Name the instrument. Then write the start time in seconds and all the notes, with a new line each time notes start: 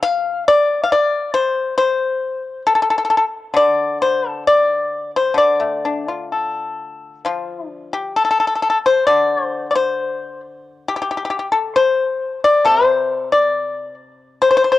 pipa
Already playing: D3
0.03 F5
0.48 D5
0.83 F5
0.92 D5
1.34 C5
1.78 C5
2.67 A4
2.75 A4
2.82 A4
2.90 A4
2.98 A4
3.05 A4
3.10 A4
3.17 A4
3.54 D3 D5
4.02 C5
4.29 A4
4.47 D5
5.16 C5
5.34 D3 D5
5.60 A3
5.85 D4
6.08 F4
6.32 A4
7.25 F3 F4
7.69 D4
7.93 G4
8.16 A4
8.25 A4
8.31 A4
8.40 A4
8.47 A4
8.55 A4
8.62 A4
8.70 A4
8.86 C5
9.07 D3 D5
9.45 C5
9.71 D5
9.75 C5
10.88 G4
10.96 G4
11.02 G4
11.11 G4
11.17 G4
11.25 G4
11.30 G4
11.39 G4
11.52 A4
11.76 C5
12.44 D5
12.65 C3 C5
13.32 D5
14.42 C5
14.51 C5
14.57 C5
14.64 C5
14.72 C5